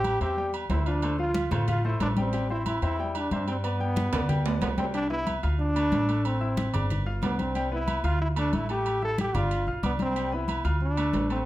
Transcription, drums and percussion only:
0.04 high conga, low agogo
0.21 high conga, low agogo
0.37 high conga
0.53 high conga, low agogo
0.70 high conga, low timbale, low agogo
0.86 high conga, low agogo
1.02 high conga, low agogo
1.19 high conga
1.35 high conga, low agogo
1.51 high conga, low conga, low agogo
1.68 high conga, low conga, low agogo
1.84 high conga
2.00 high conga, low timbale, low agogo
2.17 high conga, low agogo
2.33 high conga, low agogo
2.50 high conga
2.66 high conga, low agogo
2.82 high conga, low agogo
2.99 high conga
3.15 high conga, low agogo
3.31 high conga, low agogo
3.48 high conga, low agogo
3.64 high conga, low agogo
3.81 high conga
3.96 high conga, low agogo
4.13 high conga, low conga, high timbale, low agogo
4.29 high conga, low conga, low agogo
4.45 high conga, low timbale
4.61 high conga, low timbale, low agogo
4.78 high conga, low timbale, low agogo
4.94 high conga, low agogo
5.11 high conga
5.27 high conga, low agogo
5.43 high conga, low agogo
5.59 high conga
5.76 high conga, low agogo
5.92 high conga, low timbale, low agogo
6.09 high conga, low agogo
6.25 high conga, low agogo
6.42 high conga
6.57 high conga, low agogo
6.74 high conga, low conga, low agogo
6.90 high conga, low conga, low agogo
7.06 high conga
7.23 high conga, low timbale, low agogo
7.39 high conga, low agogo
7.55 high conga, low agogo
7.71 high conga
7.88 high conga, low agogo
8.04 high conga, low agogo
8.20 high conga
8.36 high conga, low agogo
8.53 high conga, low agogo
8.69 high conga, low agogo
8.86 high conga, low agogo
9.02 high conga
9.18 high conga, low agogo
9.35 high conga, low conga, low agogo
9.51 high conga, low agogo
9.67 high conga
9.83 high conga, low agogo
9.99 high conga, low agogo
10.16 high conga, low agogo
10.32 high conga
10.48 high conga, low agogo
10.64 high conga, low agogo
10.80 high conga
10.97 high conga, low agogo
11.13 high conga, low timbale, low agogo
11.30 high conga, low agogo

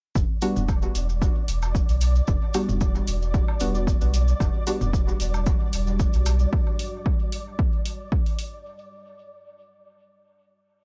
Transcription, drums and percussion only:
0.15 kick, mid tom, cabasa
0.42 open hi-hat, cabasa
0.56 mid tom, cabasa
0.68 kick, cabasa, low woodblock
0.82 cabasa
0.95 open hi-hat, cabasa
1.09 cabasa
1.22 kick, cabasa
1.48 open hi-hat, cabasa
1.62 cabasa, low woodblock
1.75 kick, cabasa
1.89 open hi-hat, cabasa
2.01 open hi-hat, cabasa
2.15 cabasa
2.27 kick, mid tom, cabasa
2.54 open hi-hat, cabasa, low woodblock
2.69 mid tom, cabasa
2.81 kick, cabasa
2.95 cabasa
3.07 open hi-hat, cabasa
3.22 cabasa
3.34 kick, cabasa
3.48 low woodblock
3.60 open hi-hat, cabasa
3.75 cabasa
3.87 kick, cabasa
4.01 open hi-hat, cabasa
4.14 open hi-hat, cabasa
4.28 cabasa
4.40 kick, mid tom, cabasa, low woodblock
4.67 open hi-hat, cabasa
4.81 mid tom, cabasa
4.93 kick, cabasa
5.08 cabasa
5.20 open hi-hat, cabasa
5.34 cabasa, low woodblock
5.46 kick, cabasa
5.73 open hi-hat, cabasa
5.87 cabasa
5.99 kick, cabasa
6.13 open hi-hat, cabasa
6.26 open hi-hat, cabasa, low woodblock
6.39 cabasa
6.53 kick
6.79 open hi-hat
7.06 kick
7.32 open hi-hat
7.59 kick
7.86 open hi-hat
8.12 kick
8.26 open hi-hat
8.39 open hi-hat

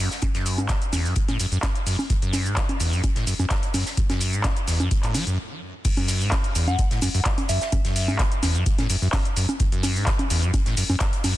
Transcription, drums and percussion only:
0.11 snare, shaker
0.22 kick, closed hi-hat, high conga, shaker
0.35 snare, closed hi-hat, shaker
0.46 closed hi-hat, open hi-hat, shaker
0.58 closed hi-hat, high conga, shaker
0.69 kick, snare, clap, closed hi-hat, shaker
0.82 closed hi-hat, shaker
0.92 snare, closed hi-hat, open hi-hat, high conga, shaker
1.05 shaker
1.16 kick, closed hi-hat, shaker
1.28 snare, closed hi-hat, high conga, shaker
1.40 closed hi-hat, open hi-hat, shaker
1.52 closed hi-hat, shaker
1.63 kick, snare, clap, closed hi-hat, high conga, shaker
1.75 closed hi-hat, shaker
1.86 closed hi-hat, open hi-hat, shaker
1.99 high conga, shaker
2.10 kick, closed hi-hat, shaker
2.22 closed hi-hat, shaker
2.33 snare, closed hi-hat, open hi-hat, high conga, shaker
2.46 closed hi-hat, shaker
2.56 kick, snare, clap, closed hi-hat, shaker
2.69 closed hi-hat, high conga, shaker
2.80 closed hi-hat, open hi-hat, shaker
2.93 shaker
3.04 kick, closed hi-hat, high conga, shaker
3.16 snare, closed hi-hat, shaker
3.27 closed hi-hat, open hi-hat, shaker
3.39 high conga, shaker
3.50 kick, snare, clap, closed hi-hat, shaker
3.63 closed hi-hat, shaker
3.74 closed hi-hat, open hi-hat, high conga, shaker
3.86 snare, shaker
3.97 kick, closed hi-hat, shaker
4.10 snare, closed hi-hat, high conga, shaker
4.21 closed hi-hat, open hi-hat, shaker
4.33 closed hi-hat, shaker
4.44 kick, snare, clap, closed hi-hat, high conga, shaker
4.56 closed hi-hat, shaker
4.68 snare, closed hi-hat, open hi-hat, shaker
4.80 closed hi-hat, high conga, shaker
4.91 kick, closed hi-hat, shaker
5.03 clap, closed hi-hat, shaker
5.14 snare, closed hi-hat, open hi-hat, high conga, shaker
5.27 closed hi-hat, shaker
5.85 kick, closed hi-hat, crash, shaker
5.97 closed hi-hat, high conga, shaker
6.08 snare, closed hi-hat, open hi-hat, shaker
6.21 shaker
6.31 kick, snare, clap, closed hi-hat, high conga, shaker
6.44 closed hi-hat, shaker
6.55 closed hi-hat, open hi-hat, shaker
6.68 closed hi-hat, high conga, shaker
6.79 kick, closed hi-hat, shaker
6.91 snare, closed hi-hat, shaker
7.01 closed hi-hat, open hi-hat, high conga, shaker
7.14 open hi-hat, shaker
7.25 kick, snare, clap, closed hi-hat, shaker
7.38 closed hi-hat, high conga, shaker
7.49 closed hi-hat, open hi-hat, shaker
7.61 snare, closed hi-hat, shaker
7.72 kick, closed hi-hat, high conga, shaker
7.85 snare, closed hi-hat, shaker
7.96 closed hi-hat, open hi-hat, shaker
8.08 high conga, shaker
8.19 kick, snare, clap, closed hi-hat, shaker
8.32 closed hi-hat, shaker
8.43 snare, closed hi-hat, open hi-hat, high conga, shaker
8.55 closed hi-hat, shaker
8.66 kick, closed hi-hat, shaker
8.78 snare, closed hi-hat, high conga, shaker
8.89 closed hi-hat, open hi-hat, shaker
9.02 shaker
9.13 kick, snare, clap, closed hi-hat, open hi-hat, high conga, shaker
9.25 closed hi-hat, shaker
9.36 closed hi-hat, open hi-hat, shaker
9.49 closed hi-hat, high conga, shaker
9.60 kick, closed hi-hat, shaker
9.72 closed hi-hat, shaker
9.83 snare, closed hi-hat, open hi-hat, high conga, shaker
9.96 shaker
10.06 kick, snare, clap, closed hi-hat, shaker
10.19 closed hi-hat, high conga, shaker
10.30 closed hi-hat, open hi-hat, shaker
10.43 closed hi-hat, shaker
10.54 kick, closed hi-hat, high conga, shaker
10.66 snare, closed hi-hat, shaker
10.77 closed hi-hat, open hi-hat, shaker
10.90 open hi-hat, high conga, shaker
11.00 kick, snare, clap, closed hi-hat, shaker
11.13 closed hi-hat, shaker
11.24 closed hi-hat, open hi-hat, high conga, shaker

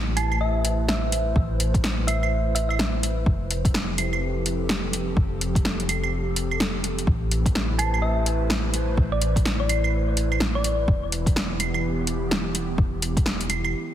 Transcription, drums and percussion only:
0.17 closed hi-hat, claves
0.32 claves
0.65 closed hi-hat
0.89 snare
1.12 closed hi-hat
1.36 kick
1.60 closed hi-hat
1.74 kick, closed hi-hat
1.84 snare
2.08 closed hi-hat, claves
2.23 claves
2.56 closed hi-hat
2.70 claves
2.79 snare
3.03 closed hi-hat
3.26 kick
3.51 closed hi-hat
3.65 kick, closed hi-hat
3.74 snare
3.98 closed hi-hat, claves
4.13 claves
4.46 closed hi-hat
4.69 snare
4.93 closed hi-hat
5.17 kick
5.41 closed hi-hat
5.55 kick, closed hi-hat
5.65 snare
5.80 closed hi-hat
5.89 closed hi-hat, claves
6.04 claves
6.36 closed hi-hat
6.51 claves
6.60 snare
6.84 closed hi-hat
6.99 closed hi-hat
7.07 kick
7.31 closed hi-hat
7.46 kick, closed hi-hat
7.55 snare
7.79 closed hi-hat, claves
7.94 claves
8.26 closed hi-hat
8.50 snare
8.74 closed hi-hat
8.97 kick
9.22 closed hi-hat
9.36 kick, closed hi-hat
9.45 snare
9.69 closed hi-hat, claves
9.84 claves
10.17 closed hi-hat
10.32 claves
10.40 snare
10.64 closed hi-hat
10.88 kick
11.12 closed hi-hat
11.26 kick, closed hi-hat
11.36 snare
11.60 closed hi-hat, claves
11.74 claves
12.07 closed hi-hat
12.31 snare
12.55 closed hi-hat
12.78 kick
13.02 closed hi-hat
13.17 kick, closed hi-hat
13.26 snare
13.41 closed hi-hat
13.50 closed hi-hat, claves
13.64 claves

